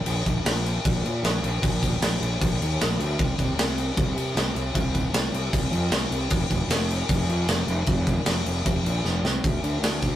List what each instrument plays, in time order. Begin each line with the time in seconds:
0.05 fingered electric bass A#1, crash
0.26 fingered electric bass A#1, kick, crash
0.44 fingered electric bass A#1, snare, crash
0.66 crash
0.85 fingered electric bass A#1, kick, crash
1.03 fingered electric bass A#2, crash
1.23 fingered electric bass A#1, snare, crash
1.43 fingered electric bass A#1, crash
1.62 fingered electric bass A#1, kick, crash
1.83 kick, crash
2.00 fingered electric bass A#1, snare, crash
2.20 fingered electric bass A#1, crash
2.41 fingered electric bass A#1, kick, crash
2.60 fingered electric bass D#2, crash
2.81 fingered electric bass A#1, snare, crash
2.98 fingered electric bass D2, crash
3.19 fingered electric bass C2, kick, crash
3.38 fingered electric bass C2, kick, crash
3.58 fingered electric bass C2, snare, crash
3.78 crash
3.97 fingered electric bass C2, kick, crash
4.16 fingered electric bass C3, crash
4.35 fingered electric bass C2, snare, crash
4.55 fingered electric bass C2, crash
4.74 fingered electric bass C2, kick, crash
4.95 kick, crash
5.13 fingered electric bass C2, snare, crash
5.32 fingered electric bass C2, crash
5.53 fingered electric bass C2, kick, crash
5.71 fingered electric bass F2, crash
5.91 fingered electric bass C2, snare, crash
6.10 fingered electric bass C2, crash
6.30 fingered electric bass F1, kick, crash
6.50 fingered electric bass F1, kick, crash
6.68 fingered electric bass F1, snare, crash
6.91 crash
7.09 fingered electric bass F1, kick, crash
7.27 fingered electric bass F2, crash
7.47 fingered electric bass F1, snare, crash
7.67 fingered electric bass F1, crash
7.86 fingered electric bass F1, kick, crash
8.07 kick, crash
8.25 fingered electric bass F1, snare, crash
8.46 fingered electric bass F1, crash
8.65 fingered electric bass F1, kick, crash
8.83 fingered electric bass A#1, crash
9.04 fingered electric bass F1, snare
9.22 fingered electric bass C2, snare
9.44 fingered electric bass D2, kick, crash
9.62 fingered electric bass D2, crash
9.82 fingered electric bass D2, snare, crash
10.02 fingered electric bass D2, kick, crash